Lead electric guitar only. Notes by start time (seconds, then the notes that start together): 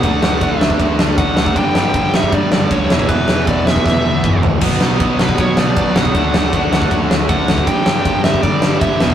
Already playing: F#5
0.60 E5
1.18 F#5
1.57 G5
2.15 E5
2.34 D5
2.72 C#5
3.09 B4
3.48 D5
3.67 E5
5.22 B4
5.40 C#5
5.59 D5
5.96 F#5
7.29 F#5
7.67 G5
8.24 E5
8.42 D5
8.80 E5